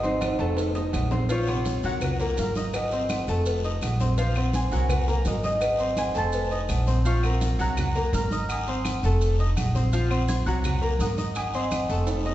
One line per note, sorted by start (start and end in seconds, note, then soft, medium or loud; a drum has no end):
0.00 0.34 G#1 medium
0.00 0.32 C4 medium
0.00 2.74 D#4 medium
0.00 1.37 F#4 medium
0.00 2.13 G#4 medium
0.00 1.08 A#4 medium
0.00 0.33 C5 medium
0.00 1.65 D#5 loud
0.00 0.58 F#5 loud
0.00 0.29 G#5 loud
0.00 0.33 C6 medium
0.00 high conga soft
0.00 low agogo medium
0.00 maracas soft
0.05 1.38 C5 medium
0.21 cowbell medium
0.21 high conga loud
0.21 high timbale loud
0.21 low agogo loud
0.21 claves medium
0.21 maracas medium
0.39 0.89 F1 medium
0.39 0.69 A3 medium
0.39 0.69 A4 medium
0.39 0.69 A5 medium
0.39 cowbell medium
0.39 high conga soft
0.39 high timbale medium
0.39 low agogo medium
0.39 maracas soft
0.57 cowbell loud
0.57 high conga soft
0.57 low timbale loud
0.57 low agogo medium
0.57 maracas medium
0.75 1.05 D#4 medium
0.75 1.05 D#5 medium
0.75 1.05 D#6 medium
0.75 cowbell medium
0.75 high bongo medium
0.75 high conga soft
0.75 low timbale medium
0.75 maracas soft
0.93 1.78 A#1 loud
0.93 cowbell medium
0.93 high bongo medium
0.93 high conga medium
0.93 low timbale medium
0.93 low agogo loud
0.93 claves medium
0.93 maracas medium
1.11 1.26 C4 medium
1.11 1.26 C5 medium
1.11 1.26 C6 medium
1.11 cowbell medium
1.11 low bongo loud
1.11 high conga medium
1.11 low timbale loud
1.11 maracas soft
1.29 1.44 F3 medium
1.29 1.44 F4 medium
1.29 1.91 F4 medium
1.29 3.23 C#5 medium
1.29 1.45 F5 medium
1.29 cowbell loud
1.29 low agogo medium
1.29 long guiro medium
1.29 maracas medium
1.47 1.77 C3 medium
1.47 1.77 C#5 medium
1.47 1.77 C6 medium
1.47 high conga soft
1.47 low agogo loud
1.47 claves medium
1.47 maracas soft
1.65 cowbell medium
1.65 high conga loud
1.65 low timbale medium
1.65 short guiro medium
1.65 maracas medium
1.83 2.34 C2 medium
1.83 2.13 F#3 medium
1.83 2.14 F#4 medium
1.83 2.38 A#4 medium
1.83 2.14 F#5 medium
1.83 2.45 F#5 loud
1.83 high conga soft
1.83 low agogo medium
1.83 short guiro medium
1.83 maracas soft
2.01 cowbell loud
2.01 high conga soft
2.01 low conga medium
2.01 low agogo loud
2.01 long guiro medium
2.01 claves medium
2.01 maracas medium
2.19 2.49 A#3 medium
2.19 2.49 A#4 medium
2.19 2.50 A#5 medium
2.19 high conga soft
2.19 maracas soft
2.37 3.22 G#1 medium
2.37 4.50 A#4 medium
2.37 4.05 F5 medium
2.37 cowbell medium
2.37 high conga medium
2.37 low timbale medium
2.37 low agogo medium
2.37 short guiro medium
2.37 maracas medium
2.55 2.85 D#4 medium
2.55 2.86 D#5 medium
2.55 2.86 D#6 medium
2.55 cowbell medium
2.55 high conga medium
2.55 short guiro medium
2.55 maracas soft
2.73 5.02 G#4 medium
2.73 4.54 D#5 medium
2.73 cowbell loud
2.73 high conga soft
2.73 low agogo loud
2.73 claves medium
2.73 maracas medium
2.91 3.22 C4 medium
2.91 3.22 C5 medium
2.91 3.22 C6 medium
2.91 high conga soft
2.91 low agogo medium
2.91 maracas soft
3.09 cowbell medium
3.09 high conga loud
3.09 low timbale medium
3.09 low agogo loud
3.09 short guiro medium
3.09 claves medium
3.09 maracas medium
3.27 3.78 F1 medium
3.27 3.57 A3 medium
3.27 3.58 A4 medium
3.27 3.58 A5 medium
3.27 cowbell medium
3.27 high conga soft
3.27 low agogo medium
3.27 short guiro medium
3.27 maracas soft
3.46 cowbell loud
3.46 high conga soft
3.46 low agogo medium
3.46 long guiro medium
3.46 maracas medium
3.64 3.93 D#4 medium
3.64 3.94 D#5 medium
3.64 3.94 D#6 medium
3.64 cowbell medium
3.64 high conga soft
3.64 maracas soft
3.81 4.66 A#1 loud
3.81 cowbell medium
3.81 high conga medium
3.81 low timbale medium
3.81 low agogo loud
3.81 short guiro medium
3.81 claves medium
3.81 maracas medium
4.00 4.15 C4 medium
4.00 4.15 C5 medium
4.00 4.15 C6 medium
4.00 cowbell medium
4.00 high conga medium
4.00 short guiro medium
4.00 maracas soft
4.18 4.33 F3 medium
4.18 4.33 F4 loud
4.18 4.33 F5 medium
4.18 cowbell loud
4.18 high conga soft
4.18 low agogo medium
4.18 long guiro medium
4.18 maracas medium
4.35 4.66 C4 medium
4.35 4.66 C5 medium
4.35 4.66 C6 medium
4.35 high conga soft
4.35 low agogo loud
4.35 claves medium
4.35 maracas soft
4.53 5.97 C5 medium
4.53 5.98 G#5 medium
4.53 cowbell medium
4.53 high conga loud
4.53 low timbale medium
4.53 short guiro medium
4.53 maracas medium
4.71 5.22 C2 medium
4.71 5.01 F#3 medium
4.71 5.01 F#4 medium
4.71 6.24 A#4 medium
4.71 6.33 F#5 medium
4.71 5.02 F#5 medium
4.71 high conga soft
4.71 low agogo medium
4.71 short guiro medium
4.71 maracas soft
4.89 cowbell loud
4.89 high conga soft
4.89 low conga medium
4.89 low agogo loud
4.89 long guiro medium
4.89 claves medium
4.89 maracas medium
5.07 5.37 A#3 medium
5.07 5.37 A#4 medium
5.07 5.37 A#5 medium
5.07 high conga soft
5.07 maracas soft
5.25 6.10 G#1 medium
5.25 5.33 F#4 medium
5.25 5.33 D#5 medium
5.25 cowbell medium
5.25 high conga medium
5.25 low timbale medium
5.25 low agogo medium
5.25 short guiro medium
5.25 maracas medium
5.43 5.73 D#4 medium
5.43 6.24 G#4 medium
5.43 5.73 D#5 medium
5.43 7.24 D#5 medium
5.43 5.73 D#6 medium
5.43 cowbell medium
5.43 high conga medium
5.43 short guiro medium
5.43 maracas soft
5.61 cowbell loud
5.61 high conga soft
5.61 low agogo loud
5.61 long guiro medium
5.61 claves medium
5.61 maracas medium
5.79 6.09 C4 medium
5.79 6.09 C5 medium
5.79 6.09 C6 medium
5.79 high conga soft
5.79 low agogo medium
5.79 maracas soft
5.97 6.17 C5 medium
5.97 6.24 G#5 medium
5.97 cowbell medium
5.97 high conga loud
5.97 low timbale medium
5.97 low agogo loud
5.97 short guiro medium
5.97 claves medium
5.97 maracas medium
6.14 6.66 F1 medium
6.14 6.44 A3 medium
6.14 6.44 A4 medium
6.14 7.13 C5 medium
6.14 6.45 A5 medium
6.14 7.67 A5 loud
6.14 cowbell medium
6.14 high conga soft
6.14 low agogo medium
6.14 short guiro medium
6.14 maracas soft
6.32 cowbell loud
6.32 high conga soft
6.32 low agogo medium
6.32 long guiro medium
6.32 maracas medium
6.51 6.81 D#4 medium
6.51 6.81 D#5 medium
6.51 6.81 D#6 medium
6.51 cowbell medium
6.51 high conga soft
6.51 maracas soft
6.69 7.54 A#1 medium
6.69 cowbell medium
6.69 high conga medium
6.69 low timbale medium
6.69 low agogo loud
6.69 short guiro medium
6.69 claves medium
6.69 maracas medium
6.87 7.02 C4 medium
6.87 7.02 C5 medium
6.87 7.02 C6 medium
6.87 cowbell medium
6.87 high conga medium
6.87 short guiro medium
6.87 maracas soft
7.05 7.20 F3 medium
7.05 7.20 F4 medium
7.05 7.20 F5 medium
7.05 7.67 F5 medium
7.05 8.33 C#6 loud
7.05 high conga soft
7.05 low agogo medium
7.05 long guiro medium
7.05 maracas medium
7.23 7.53 C4 medium
7.23 7.53 A#4 medium
7.23 high conga soft
7.23 low agogo loud
7.23 claves medium
7.23 maracas soft
7.41 high conga loud
7.41 low timbale medium
7.41 short guiro medium
7.41 maracas medium
7.59 8.09 C2 medium
7.59 7.88 F#3 medium
7.59 7.89 F#4 medium
7.59 7.89 F#5 medium
7.59 8.14 A#5 medium
7.59 8.20 F#6 loud
7.59 high conga soft
7.59 low agogo medium
7.59 short guiro medium
7.59 maracas soft
7.77 high conga soft
7.77 low conga medium
7.77 low agogo loud
7.77 long guiro medium
7.77 claves medium
7.77 maracas medium
7.95 8.25 A#3 medium
7.95 8.25 A#4 medium
7.95 8.25 A#5 medium
7.95 high conga soft
7.95 maracas soft
8.13 8.97 G#1 loud
8.13 9.55 A#5 medium
8.13 9.24 F6 medium
8.13 high conga medium
8.13 low timbale medium
8.13 low agogo medium
8.13 short guiro medium
8.13 maracas medium
8.31 8.61 D#4 medium
8.31 8.61 D#5 medium
8.31 8.61 D#6 medium
8.31 high conga medium
8.31 short guiro medium
8.31 maracas soft
8.49 10.02 G#5 medium
8.49 9.69 D#6 medium
8.49 high conga soft
8.49 low agogo loud
8.49 long guiro medium
8.49 claves medium
8.49 maracas medium
8.67 8.97 C4 medium
8.67 8.97 C5 medium
8.67 8.97 C6 medium
8.67 high conga soft
8.67 low agogo medium
8.67 maracas soft
8.85 high conga loud
8.85 low timbale medium
8.85 low agogo loud
8.85 short guiro medium
8.85 claves medium
8.85 maracas medium
9.03 9.53 F1 medium
9.03 9.33 A3 medium
9.03 9.33 A4 medium
9.03 9.33 A5 medium
9.03 high conga soft
9.03 low agogo medium
9.03 short guiro medium
9.03 maracas soft
9.21 high conga soft
9.21 low agogo medium
9.21 long guiro medium
9.21 maracas medium
9.39 9.68 D#4 medium
9.39 9.69 D#5 medium
9.39 9.69 D#6 medium
9.39 high conga soft
9.39 maracas soft
9.57 10.41 A#1 medium
9.57 high conga medium
9.57 low timbale medium
9.57 low agogo loud
9.57 short guiro medium
9.57 claves medium
9.57 maracas medium
9.75 9.90 C4 medium
9.75 9.90 C5 medium
9.75 9.90 C6 medium
9.75 high conga medium
9.75 short guiro medium
9.75 maracas soft
9.93 10.07 F3 medium
9.93 10.08 F4 medium
9.93 10.08 F5 medium
9.93 high conga soft
9.93 low agogo medium
9.93 long guiro medium
9.93 maracas medium
10.10 10.40 C4 medium
10.10 10.40 C5 medium
10.10 10.40 C6 medium
10.10 high conga soft
10.10 low agogo loud
10.10 claves medium
10.10 maracas soft
10.28 10.35 C6 medium
10.28 10.34 G#6 loud
10.28 high conga loud
10.28 low timbale medium
10.28 short guiro medium
10.28 maracas medium
10.46 10.96 C2 loud
10.46 10.76 F#3 medium
10.46 10.76 F#4 medium
10.46 10.76 F#5 medium
10.46 11.87 A#5 medium
10.46 11.52 F#6 loud
10.46 high conga soft
10.46 low agogo medium
10.46 short guiro medium
10.46 maracas soft
10.64 high conga soft
10.64 low conga medium
10.64 low agogo loud
10.64 long guiro medium
10.64 claves medium
10.64 maracas medium
10.82 11.11 A#3 medium
10.82 11.11 A#4 medium
10.82 11.12 A#5 medium
10.82 high conga soft
10.82 maracas soft
10.99 11.83 G#1 medium
10.99 12.35 F#5 medium
10.99 11.36 D#6 medium
10.99 high conga medium
10.99 low timbale medium
10.99 low agogo medium
10.99 short guiro medium
10.99 maracas medium
11.17 11.47 D#4 medium
11.17 11.47 D#5 medium
11.17 11.48 D#6 medium
11.17 high conga medium
11.17 short guiro medium
11.17 maracas soft
11.35 12.35 G#5 medium
11.35 12.35 D#6 loud
11.35 high conga soft
11.35 low agogo loud
11.35 long guiro medium
11.35 claves medium
11.35 maracas medium
11.54 11.84 C4 medium
11.54 11.84 C5 medium
11.54 12.35 D#5 medium
11.54 12.35 C6 loud
11.54 11.84 C6 medium
11.54 high conga soft
11.54 low agogo medium
11.54 maracas soft
11.71 high conga loud
11.71 low timbale medium
11.71 low agogo loud
11.71 short guiro medium
11.71 claves medium
11.71 maracas medium
11.88 12.35 F1 loud
11.88 12.19 A3 medium
11.88 12.19 A4 medium
11.88 12.20 A5 medium
11.88 high conga soft
11.88 low agogo medium
11.88 short guiro medium
11.88 maracas soft
12.07 high conga soft
12.07 high timbale medium
12.07 low agogo medium
12.07 long guiro medium
12.07 maracas medium
12.25 12.35 D#4 medium
12.25 12.35 D#5 medium
12.25 12.35 D#6 medium
12.25 high conga soft
12.25 low timbale medium
12.25 maracas soft